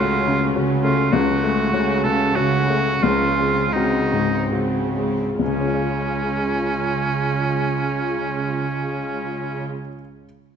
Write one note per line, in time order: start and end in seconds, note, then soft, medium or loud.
0.00 1.09 C#2 soft
0.00 0.48 C#3 soft
0.00 0.15 A3 soft
0.00 0.25 A3 soft
0.00 0.23 C#4 soft
0.00 0.26 C#4 soft
0.00 0.54 F4 soft
0.00 0.23 F#4 soft
0.27 0.72 C#3 soft
0.27 0.83 A3 soft
0.27 0.83 C#4 soft
0.56 1.07 C#3 soft
0.56 0.81 C#4 soft
0.56 0.82 F#4 soft
0.82 1.13 A3 soft
0.82 1.13 C#4 soft
0.82 1.14 F4 medium
1.13 2.98 C#2 medium
1.13 1.66 C#3 medium
1.13 2.03 F#4 medium
1.43 2.02 A3 soft
1.43 1.92 A3 soft
1.43 2.02 C#4 soft
1.74 2.29 C#3 soft
1.74 2.01 C#4 soft
1.74 2.01 F#4 soft
2.04 2.56 C#3 soft
2.04 2.68 A3 soft
2.04 2.68 C#4 soft
2.04 2.37 A4 medium
2.36 2.94 C#3 soft
2.36 2.66 C#4 soft
2.36 3.05 F#4 medium
2.36 2.66 F#4 soft
2.70 3.03 A3 soft
2.70 3.02 A3 soft
2.70 3.02 C#4 soft
3.01 3.72 C#2 soft
3.01 3.64 C#3 soft
3.01 3.36 G#3 soft
3.01 3.36 C4 soft
3.01 3.74 F4 medium
3.37 4.10 G#3 soft
3.37 3.97 G#3 soft
3.37 4.10 C4 soft
3.73 4.43 C#3 soft
3.73 4.09 C4 soft
3.73 4.53 D#4 medium
3.73 4.09 F#4 soft
4.11 4.53 G#2 soft
4.11 4.95 G#3 soft
4.11 4.95 C4 soft
4.52 5.30 C#3 soft
4.52 4.93 C4 soft
4.52 4.92 F#4 soft
4.96 5.39 G#3 soft
4.96 5.38 G#3 soft
4.96 5.38 C4 soft
5.39 9.66 C#2 soft
5.39 9.66 C#3 soft
5.39 9.66 G#3 soft
5.39 9.65 C#4 soft
5.39 9.66 F4 soft
5.46 9.73 C#3 soft
5.53 9.80 G#3 soft
5.60 9.87 C#4 soft
5.68 9.94 F4 soft
5.74 10.01 C#5 soft